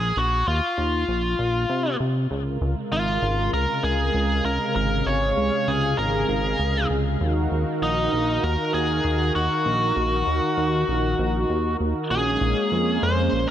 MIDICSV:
0, 0, Header, 1, 4, 480
1, 0, Start_track
1, 0, Tempo, 612245
1, 1813, Time_signature, 4, 2, 24, 8
1, 10589, End_track
2, 0, Start_track
2, 0, Title_t, "Lead electric guitar"
2, 0, Program_c, 0, 29
2, 0, Note_on_c, 0, 68, 102
2, 139, Note_on_c, 0, 66, 89
2, 143, Note_off_c, 0, 68, 0
2, 374, Note_off_c, 0, 66, 0
2, 377, Note_on_c, 0, 65, 75
2, 1543, Note_off_c, 0, 65, 0
2, 2293, Note_on_c, 0, 65, 80
2, 2741, Note_off_c, 0, 65, 0
2, 2773, Note_on_c, 0, 70, 96
2, 3010, Note_off_c, 0, 70, 0
2, 3013, Note_on_c, 0, 68, 94
2, 3489, Note_off_c, 0, 68, 0
2, 3492, Note_on_c, 0, 70, 99
2, 3721, Note_off_c, 0, 70, 0
2, 3730, Note_on_c, 0, 70, 102
2, 3971, Note_on_c, 0, 73, 111
2, 3979, Note_off_c, 0, 70, 0
2, 4452, Note_on_c, 0, 68, 86
2, 4466, Note_off_c, 0, 73, 0
2, 4690, Note_off_c, 0, 68, 0
2, 4693, Note_on_c, 0, 70, 89
2, 5381, Note_off_c, 0, 70, 0
2, 6137, Note_on_c, 0, 63, 90
2, 6614, Note_on_c, 0, 70, 109
2, 6629, Note_off_c, 0, 63, 0
2, 6851, Note_off_c, 0, 70, 0
2, 6854, Note_on_c, 0, 68, 97
2, 7302, Note_off_c, 0, 68, 0
2, 7334, Note_on_c, 0, 66, 95
2, 9222, Note_off_c, 0, 66, 0
2, 9492, Note_on_c, 0, 68, 106
2, 10216, Note_on_c, 0, 72, 106
2, 10234, Note_off_c, 0, 68, 0
2, 10569, Note_off_c, 0, 72, 0
2, 10589, End_track
3, 0, Start_track
3, 0, Title_t, "Analog synth pad"
3, 0, Program_c, 1, 89
3, 1812, Note_on_c, 1, 48, 72
3, 1812, Note_on_c, 1, 49, 79
3, 1812, Note_on_c, 1, 56, 73
3, 1812, Note_on_c, 1, 77, 75
3, 1813, Note_on_c, 1, 70, 91
3, 3714, Note_off_c, 1, 70, 0
3, 3733, Note_on_c, 1, 68, 92
3, 5621, Note_off_c, 1, 48, 0
3, 5621, Note_off_c, 1, 49, 0
3, 5621, Note_off_c, 1, 56, 0
3, 5634, Note_off_c, 1, 68, 0
3, 5655, Note_on_c, 1, 63, 74
3, 5655, Note_on_c, 1, 70, 88
3, 5656, Note_on_c, 1, 51, 78
3, 5656, Note_on_c, 1, 66, 77
3, 9461, Note_off_c, 1, 77, 0
3, 9463, Note_off_c, 1, 51, 0
3, 9463, Note_off_c, 1, 63, 0
3, 9463, Note_off_c, 1, 66, 0
3, 9463, Note_off_c, 1, 70, 0
3, 9494, Note_on_c, 1, 58, 73
3, 9495, Note_on_c, 1, 56, 84
3, 9495, Note_on_c, 1, 61, 93
3, 10589, Note_off_c, 1, 56, 0
3, 10589, Note_off_c, 1, 58, 0
3, 10589, Note_off_c, 1, 61, 0
3, 10589, End_track
4, 0, Start_track
4, 0, Title_t, "Analog synth bass"
4, 0, Program_c, 2, 38
4, 0, Note_on_c, 2, 34, 97
4, 99, Note_off_c, 2, 34, 0
4, 130, Note_on_c, 2, 34, 81
4, 339, Note_off_c, 2, 34, 0
4, 370, Note_on_c, 2, 39, 99
4, 475, Note_off_c, 2, 39, 0
4, 610, Note_on_c, 2, 39, 99
4, 820, Note_off_c, 2, 39, 0
4, 850, Note_on_c, 2, 34, 91
4, 1060, Note_off_c, 2, 34, 0
4, 1090, Note_on_c, 2, 34, 101
4, 1299, Note_off_c, 2, 34, 0
4, 1330, Note_on_c, 2, 48, 86
4, 1539, Note_off_c, 2, 48, 0
4, 1570, Note_on_c, 2, 48, 79
4, 1780, Note_off_c, 2, 48, 0
4, 1810, Note_on_c, 2, 37, 100
4, 2020, Note_off_c, 2, 37, 0
4, 2050, Note_on_c, 2, 37, 95
4, 2155, Note_off_c, 2, 37, 0
4, 2289, Note_on_c, 2, 32, 81
4, 2499, Note_off_c, 2, 32, 0
4, 2529, Note_on_c, 2, 32, 103
4, 2739, Note_off_c, 2, 32, 0
4, 2770, Note_on_c, 2, 37, 90
4, 2875, Note_off_c, 2, 37, 0
4, 3010, Note_on_c, 2, 37, 91
4, 3219, Note_off_c, 2, 37, 0
4, 3249, Note_on_c, 2, 37, 95
4, 3459, Note_off_c, 2, 37, 0
4, 3490, Note_on_c, 2, 37, 89
4, 3596, Note_off_c, 2, 37, 0
4, 3729, Note_on_c, 2, 32, 99
4, 3939, Note_off_c, 2, 32, 0
4, 3970, Note_on_c, 2, 32, 90
4, 4179, Note_off_c, 2, 32, 0
4, 4209, Note_on_c, 2, 37, 103
4, 4315, Note_off_c, 2, 37, 0
4, 4450, Note_on_c, 2, 37, 107
4, 4660, Note_off_c, 2, 37, 0
4, 4690, Note_on_c, 2, 32, 90
4, 4900, Note_off_c, 2, 32, 0
4, 4930, Note_on_c, 2, 32, 102
4, 5140, Note_off_c, 2, 32, 0
4, 5171, Note_on_c, 2, 37, 97
4, 5380, Note_off_c, 2, 37, 0
4, 5410, Note_on_c, 2, 37, 89
4, 5620, Note_off_c, 2, 37, 0
4, 5652, Note_on_c, 2, 39, 102
4, 5861, Note_off_c, 2, 39, 0
4, 5893, Note_on_c, 2, 39, 94
4, 5997, Note_off_c, 2, 39, 0
4, 6132, Note_on_c, 2, 34, 83
4, 6340, Note_off_c, 2, 34, 0
4, 6373, Note_on_c, 2, 34, 100
4, 6581, Note_off_c, 2, 34, 0
4, 6614, Note_on_c, 2, 39, 93
4, 6717, Note_off_c, 2, 39, 0
4, 6853, Note_on_c, 2, 39, 89
4, 7061, Note_off_c, 2, 39, 0
4, 7093, Note_on_c, 2, 39, 92
4, 7301, Note_off_c, 2, 39, 0
4, 7333, Note_on_c, 2, 39, 83
4, 7437, Note_off_c, 2, 39, 0
4, 7573, Note_on_c, 2, 34, 94
4, 7781, Note_off_c, 2, 34, 0
4, 7812, Note_on_c, 2, 34, 87
4, 8021, Note_off_c, 2, 34, 0
4, 8052, Note_on_c, 2, 39, 100
4, 8156, Note_off_c, 2, 39, 0
4, 8291, Note_on_c, 2, 39, 105
4, 8500, Note_off_c, 2, 39, 0
4, 8532, Note_on_c, 2, 34, 87
4, 8741, Note_off_c, 2, 34, 0
4, 8772, Note_on_c, 2, 34, 105
4, 8980, Note_off_c, 2, 34, 0
4, 9012, Note_on_c, 2, 39, 102
4, 9221, Note_off_c, 2, 39, 0
4, 9252, Note_on_c, 2, 39, 80
4, 9357, Note_off_c, 2, 39, 0
4, 9491, Note_on_c, 2, 34, 100
4, 9700, Note_off_c, 2, 34, 0
4, 9732, Note_on_c, 2, 34, 95
4, 9837, Note_off_c, 2, 34, 0
4, 9971, Note_on_c, 2, 41, 87
4, 10180, Note_off_c, 2, 41, 0
4, 10212, Note_on_c, 2, 41, 99
4, 10421, Note_off_c, 2, 41, 0
4, 10452, Note_on_c, 2, 34, 95
4, 10556, Note_off_c, 2, 34, 0
4, 10589, End_track
0, 0, End_of_file